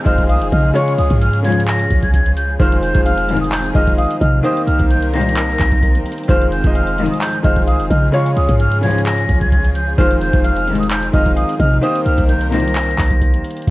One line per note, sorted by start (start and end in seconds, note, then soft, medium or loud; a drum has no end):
0.00 0.04 D#3 loud
0.00 0.53 D#3 medium
0.00 4.40 F3 medium
0.00 0.05 G#3 medium
0.00 0.73 C4 medium
0.00 0.73 D#4 medium
0.00 0.05 F4 medium
0.00 2.56 G#4 medium
0.00 0.06 C5 loud
0.00 0.77 D#5 medium
0.05 0.30 F1 loud
0.05 0.53 G#3 medium
0.05 0.53 F4 medium
0.05 0.54 C5 medium
0.05 0.28 D#5 medium
0.05 0.24 F6 medium
0.05 kick loud
0.05 closed hi-hat medium
0.18 kick loud
0.18 closed hi-hat medium
0.29 0.43 C2 loud
0.29 0.51 F5 medium
0.29 0.47 D#6 medium
0.29 closed hi-hat medium
0.41 0.52 F1 loud
0.41 closed hi-hat medium
0.52 0.96 C#3 loud
0.52 0.74 D#5 medium
0.52 0.70 F6 medium
0.52 kick loud
0.52 closed hi-hat medium
0.73 1.22 C#3 loud
0.73 1.22 G#3 medium
0.73 2.58 G#3 medium
0.73 2.58 C#4 medium
0.73 1.23 F4 loud
0.73 1.18 C#5 loud
0.73 1.23 C#5 loud
0.73 0.93 C#6 loud
0.73 closed hi-hat medium
0.88 closed hi-hat medium
0.98 1.10 C#2 loud
0.98 1.17 D#6 medium
0.98 closed hi-hat medium
1.10 1.87 G#2 loud
1.10 kick loud
1.10 closed hi-hat medium
1.21 1.39 F6 medium
1.21 closed hi-hat medium
1.33 closed hi-hat medium
1.42 1.78 C#2 loud
1.42 1.78 G#2 loud
1.42 2.07 C#3 medium
1.42 1.78 F3 loud
1.42 2.08 G#3 medium
1.42 2.08 F4 medium
1.42 2.08 C#5 medium
1.42 1.63 G#6 medium
1.42 closed hi-hat medium
1.42 open hi-hat medium
1.52 closed hi-hat medium
1.60 closed hi-hat medium
1.67 2.01 A#6 medium
1.67 clap loud
1.67 closed hi-hat medium
1.79 closed hi-hat medium
1.90 2.57 C#2 loud
1.90 kick loud
1.90 closed hi-hat medium
2.03 2.11 G#6 medium
2.03 kick loud
2.03 closed hi-hat medium
2.14 2.32 G#6 medium
2.14 kick loud
2.14 closed hi-hat medium
2.26 closed hi-hat medium
2.37 2.55 G6 medium
2.37 closed hi-hat medium
2.59 2.94 F1 loud
2.59 2.83 D#3 loud
2.59 2.84 G#3 medium
2.59 4.43 C4 medium
2.59 4.43 D#4 medium
2.59 2.84 F4 medium
2.59 4.43 G#4 medium
2.59 3.03 C5 loud
2.59 2.85 C5 loud
2.59 2.78 F6 medium
2.59 kick loud
2.59 closed hi-hat medium
2.72 closed hi-hat medium
2.83 3.01 G6 medium
2.83 closed hi-hat medium
2.93 3.72 F1 loud
2.93 3.49 D#3 medium
2.93 3.49 G#3 medium
2.93 3.50 F4 medium
2.93 3.50 C5 medium
2.93 kick loud
2.93 closed hi-hat medium
3.06 3.71 F5 medium
3.06 3.39 F6 medium
3.06 closed hi-hat medium
3.18 closed hi-hat medium
3.29 3.63 C2 medium
3.29 3.63 G#2 loud
3.29 3.63 D#3 loud
3.29 closed hi-hat medium
3.37 closed hi-hat medium
3.41 3.50 D#6 medium
3.41 closed hi-hat medium
3.52 3.70 G6 medium
3.52 clap loud
3.52 closed hi-hat medium
3.64 closed hi-hat medium
3.73 3.97 F1 loud
3.73 4.22 D#3 medium
3.73 4.22 G#3 medium
3.73 4.23 F4 medium
3.73 3.97 D#5 medium
3.73 4.23 D#5 medium
3.73 3.93 F6 medium
3.73 kick loud
3.73 closed hi-hat medium
3.87 kick loud
3.87 closed hi-hat medium
3.98 4.20 F5 medium
3.98 4.16 D#6 medium
3.98 closed hi-hat medium
4.11 closed hi-hat medium
4.21 4.43 C3 loud
4.21 4.43 D#5 medium
4.21 4.40 F6 medium
4.21 kick loud
4.21 closed hi-hat medium
4.43 4.91 D#3 loud
4.43 6.27 G3 medium
4.43 4.92 A#3 medium
4.43 8.10 C4 medium
4.43 6.27 D#4 medium
4.43 4.92 G4 medium
4.43 6.27 A#4 medium
4.43 4.88 C5 loud
4.43 4.93 C5 loud
4.43 4.63 D#6 loud
4.43 closed hi-hat medium
4.57 closed hi-hat medium
4.67 4.79 C2 loud
4.67 4.86 F6 medium
4.67 closed hi-hat medium
4.80 5.57 C2 loud
4.80 kick loud
4.80 closed hi-hat medium
4.91 5.09 G6 medium
4.91 closed hi-hat medium
5.03 closed hi-hat medium
5.14 5.47 C2 loud
5.14 5.47 A#2 loud
5.14 5.47 D#3 loud
5.14 5.78 D#3 medium
5.14 5.78 A#3 medium
5.14 5.78 G4 medium
5.14 5.79 C5 medium
5.14 5.98 A#6 medium
5.14 closed hi-hat medium
5.14 open hi-hat medium
5.21 closed hi-hat medium
5.29 closed hi-hat medium
5.37 clap loud
5.37 closed hi-hat medium
5.44 closed hi-hat soft
5.52 closed hi-hat soft
5.60 6.04 C2 loud
5.60 kick loud
5.60 clap loud
5.60 closed hi-hat medium
5.72 kick loud
5.72 closed hi-hat medium
5.83 kick loud
5.83 closed hi-hat medium
5.95 closed hi-hat medium
6.06 closed hi-hat medium
6.12 closed hi-hat medium
6.18 closed hi-hat medium
6.24 closed hi-hat medium
6.28 6.63 F1 loud
6.28 6.52 D#3 loud
6.28 11.79 F3 medium
6.28 6.53 G#3 medium
6.28 8.12 D#4 medium
6.28 6.53 F4 medium
6.28 11.79 G#4 medium
6.28 6.72 C5 loud
6.28 6.53 C5 loud
6.28 6.47 F6 medium
6.28 kick loud
6.28 closed hi-hat medium
6.42 closed hi-hat medium
6.52 6.70 G6 medium
6.52 closed hi-hat medium
6.64 7.09 F1 loud
6.64 7.19 D#3 medium
6.64 7.20 G#3 medium
6.64 7.20 F4 medium
6.64 7.21 D#5 medium
6.64 kick loud
6.64 closed hi-hat medium
6.75 7.40 F5 medium
6.75 7.08 F6 medium
6.75 closed hi-hat medium
6.87 closed hi-hat medium
6.98 7.32 C2 medium
6.98 7.32 G#2 medium
6.98 7.32 D#3 loud
6.98 closed hi-hat medium
7.06 closed hi-hat medium
7.10 7.19 D#6 medium
7.10 closed hi-hat medium
7.21 7.39 G6 medium
7.21 clap loud
7.21 closed hi-hat medium
7.33 closed hi-hat medium
7.43 7.69 F1 loud
7.43 7.91 D#3 medium
7.43 7.92 G#3 medium
7.43 7.92 F4 medium
7.43 7.92 C5 medium
7.43 7.66 D#5 medium
7.43 7.63 F6 medium
7.43 kick loud
7.43 closed hi-hat medium
7.56 kick medium
7.56 closed hi-hat medium
7.67 7.81 C2 loud
7.67 7.89 F5 medium
7.67 7.86 D#6 medium
7.67 closed hi-hat medium
7.80 7.90 F1 loud
7.80 closed hi-hat medium
7.90 8.35 C#3 loud
7.90 8.12 D#5 medium
7.90 8.09 F6 medium
7.90 kick loud
7.90 closed hi-hat medium
8.12 8.61 C#3 loud
8.12 8.61 G#3 medium
8.12 9.96 G#3 medium
8.12 9.96 C#4 medium
8.12 8.61 F4 loud
8.12 8.57 C#5 loud
8.12 8.62 C#5 loud
8.12 8.32 C#6 loud
8.12 closed hi-hat medium
8.26 closed hi-hat medium
8.37 8.48 C#2 loud
8.37 8.55 D#6 medium
8.37 closed hi-hat medium
8.49 9.26 G#2 loud
8.49 kick loud
8.49 closed hi-hat medium
8.60 8.78 F6 medium
8.60 closed hi-hat medium
8.72 closed hi-hat medium
8.81 9.16 C#2 loud
8.81 9.16 G#2 loud
8.81 9.46 C#3 medium
8.81 9.16 F3 loud
8.81 9.46 G#3 medium
8.81 9.47 F4 medium
8.81 9.47 C#5 medium
8.81 9.01 G#6 medium
8.81 closed hi-hat medium
8.81 open hi-hat medium
8.90 closed hi-hat medium
8.98 closed hi-hat medium
9.06 9.39 A#6 medium
9.06 clap loud
9.06 closed hi-hat medium
9.18 closed hi-hat medium
9.29 9.95 C#2 loud
9.29 kick loud
9.29 closed hi-hat medium
9.41 9.50 G#6 medium
9.41 kick loud
9.41 closed hi-hat medium
9.52 9.70 G#6 medium
9.52 kick medium
9.52 closed hi-hat medium
9.64 closed hi-hat medium
9.75 9.93 G6 medium
9.75 closed hi-hat medium
9.98 10.32 F1 loud
9.98 10.22 D#3 loud
9.98 10.22 G#3 medium
9.98 13.64 C4 medium
9.98 13.64 D#4 medium
9.98 10.23 F4 medium
9.98 10.42 C5 loud
9.98 10.23 C5 loud
9.98 10.16 F6 medium
9.98 kick loud
9.98 closed hi-hat medium
10.11 closed hi-hat medium
10.21 10.40 G6 medium
10.21 closed hi-hat medium
10.32 11.10 F1 loud
10.32 10.88 D#3 medium
10.32 10.88 G#3 medium
10.32 10.88 F4 medium
10.32 10.89 C5 medium
10.32 kick loud
10.32 closed hi-hat medium
10.44 11.10 F5 medium
10.44 10.77 F6 medium
10.44 closed hi-hat medium
10.56 closed hi-hat medium
10.67 11.01 C2 medium
10.67 11.01 G#2 loud
10.67 11.01 D#3 loud
10.67 closed hi-hat medium
10.75 closed hi-hat medium
10.80 10.88 D#6 medium
10.80 closed hi-hat medium
10.90 11.09 G6 medium
10.90 clap loud
10.90 closed hi-hat medium
11.02 closed hi-hat medium
11.12 11.36 F1 loud
11.12 11.61 D#3 medium
11.12 11.61 G#3 medium
11.12 11.61 F4 medium
11.12 11.35 D#5 medium
11.12 11.62 D#5 medium
11.12 11.32 F6 medium
11.12 kick loud
11.12 closed hi-hat medium
11.26 kick medium
11.26 closed hi-hat medium
11.37 11.59 F5 medium
11.37 11.55 D#6 medium
11.37 closed hi-hat medium
11.49 closed hi-hat medium
11.60 11.82 C3 loud
11.60 11.82 D#5 medium
11.60 11.78 F6 medium
11.60 kick loud
11.60 closed hi-hat medium
11.81 12.30 D#3 loud
11.81 13.66 G3 medium
11.81 12.30 A#3 medium
11.81 12.31 G4 medium
11.81 13.66 A#4 medium
11.81 12.26 C5 loud
11.81 12.31 C5 loud
11.81 12.01 D#6 loud
11.81 closed hi-hat medium
11.95 closed hi-hat medium
12.06 12.18 C2 loud
12.06 12.24 F6 medium
12.06 closed hi-hat medium
12.18 12.95 C2 loud
12.18 kick loud
12.18 closed hi-hat medium
12.29 12.47 G6 medium
12.29 closed hi-hat medium
12.41 closed hi-hat medium
12.52 12.86 C2 loud
12.52 12.86 A#2 loud
12.52 13.16 D#3 medium
12.52 12.86 D#3 loud
12.52 13.16 A#3 medium
12.52 13.17 G4 medium
12.52 13.17 C5 medium
12.52 13.45 A#6 medium
12.52 closed hi-hat medium
12.52 open hi-hat medium
12.60 closed hi-hat medium
12.68 closed hi-hat medium
12.75 clap loud
12.75 closed hi-hat medium
12.83 closed hi-hat soft
12.91 closed hi-hat soft
12.98 13.43 C2 loud
12.98 kick loud
12.98 clap loud
12.98 closed hi-hat medium
13.10 kick loud
13.10 closed hi-hat medium
13.21 kick loud
13.21 closed hi-hat medium
13.34 closed hi-hat medium
13.44 closed hi-hat medium
13.51 closed hi-hat medium
13.57 closed hi-hat medium
13.62 closed hi-hat soft